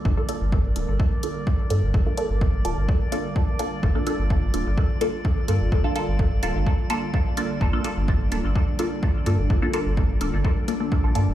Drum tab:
HH |-x-x-x-x|-x-x-x-x|-x-x-x-x|-x-x-x-x|
BD |o-o-o-o-|o-o-o-o-|o-o-o-o-|o-o-o-o-|

HH |-x-x-x-x|-x-x-x-x|
BD |o-o-o-o-|o-o-o-o-|